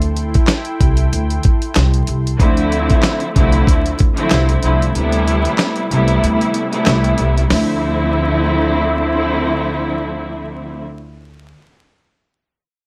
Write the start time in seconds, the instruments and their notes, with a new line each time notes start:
Already playing: upright bass D2, analog synth pad E4 A4 G5 C6
0.02 closed hi-hat
0.17 closed hi-hat
0.34 kick, closed hi-hat
0.47 snare, clap, closed hi-hat
0.65 closed hi-hat
0.81 upright bass C2, kick, closed hi-hat
0.97 closed hi-hat
1.12 upright bass D2, closed hi-hat
1.30 closed hi-hat
1.43 kick, closed hi-hat
1.62 closed hi-hat
1.75 upright bass C2, snare, clap, closed hi-hat
1.94 closed hi-hat
2.07 upright bass C2, closed hi-hat
2.27 closed hi-hat
2.39 upright bass D2, string section D3 F3 A3 C4 E4, kick, closed hi-hat
2.57 closed hi-hat
2.72 closed hi-hat
2.90 kick, closed hi-hat
3.03 snare, clap, closed hi-hat
3.20 closed hi-hat
3.34 upright bass C2, string section D3 F3 A3 C4 E4, kick, closed hi-hat
3.52 closed hi-hat
3.67 upright bass D2, kick, closed hi-hat
3.86 closed hi-hat
3.99 kick, closed hi-hat
4.16 string section D3 F3 A3 C4 E4, closed hi-hat
4.30 upright bass C2, snare, clap, closed hi-hat
4.49 closed hi-hat
4.62 upright bass C2, string section D3 F3 A3 C4 E4, closed hi-hat
4.82 closed hi-hat
4.94 upright bass D2, string section C3 G3 A3 B3 E4, closed hi-hat
5.12 closed hi-hat
5.27 closed hi-hat
5.45 closed hi-hat
5.58 snare, clap, closed hi-hat
5.76 closed hi-hat
5.89 upright bass C2, string section C3 G3 A3 B3 E4, closed hi-hat
6.08 closed hi-hat
6.23 upright bass D2, closed hi-hat
6.41 closed hi-hat
6.54 closed hi-hat
6.71 string section C3 G3 A3 B3 E4, closed hi-hat
6.86 upright bass C2, snare, clap, closed hi-hat
7.04 closed hi-hat
7.18 upright bass C2, closed hi-hat
7.38 closed hi-hat
7.50 upright bass D2, string section D3 F3 A3 C4 E4, snare, open hi-hat